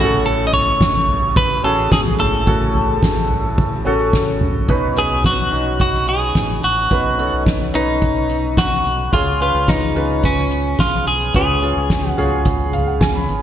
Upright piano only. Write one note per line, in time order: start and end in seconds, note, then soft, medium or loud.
0.00 0.77 A2 medium
0.00 0.98 C#4 medium
0.00 0.98 F#4 medium
0.05 1.02 A4 medium
1.63 2.39 C#4 medium
1.63 2.39 F#4 medium
1.63 2.40 G#4 medium
2.19 2.99 A2 medium
2.46 3.47 C#4 medium
2.46 3.47 F#4 medium
2.46 3.48 A4 medium
3.85 4.61 C#4 medium
3.85 4.61 F#4 medium
3.85 4.62 A4 medium
4.68 5.48 B2 medium
4.68 4.94 C#4 medium
4.68 4.94 D#4 medium
4.68 4.94 B4 medium
4.96 5.47 C#4 medium
4.96 5.47 D#4 soft
4.96 5.47 B4 medium
5.51 6.52 C#4 medium
5.51 6.53 D#4 medium
5.51 6.53 F#4 medium
6.90 7.70 B2 medium
6.90 7.16 C#4 medium
6.90 7.16 D#4 medium
6.90 7.16 B4 medium
7.18 7.68 C#4 medium
7.18 7.69 D#4 medium
7.18 7.69 A4 medium
7.74 8.74 C#4 medium
7.74 8.75 D#4 medium
7.74 8.75 B4 medium
9.12 9.92 C#3 medium
9.12 9.38 C#4 medium
9.12 9.38 F4 medium
9.12 9.38 G#4 medium
9.40 9.91 C#4 medium
9.40 9.91 F4 medium
9.40 9.91 B4 medium
9.95 10.96 C#4 medium
9.95 10.96 F4 medium
9.95 10.97 B4 medium
11.34 12.14 C#3 medium
11.34 11.59 C#4 medium
11.34 11.60 F4 medium
11.34 11.60 B4 medium
11.62 12.12 C#4 medium
11.62 12.13 F4 medium
11.62 12.13 G#4 medium
12.17 13.18 C#4 medium
12.17 13.18 F4 medium
12.17 13.19 G#4 medium
12.73 12.86 F5 medium
12.87 13.00 F#5 medium
13.01 13.14 G#5 medium
13.15 13.42 B5 medium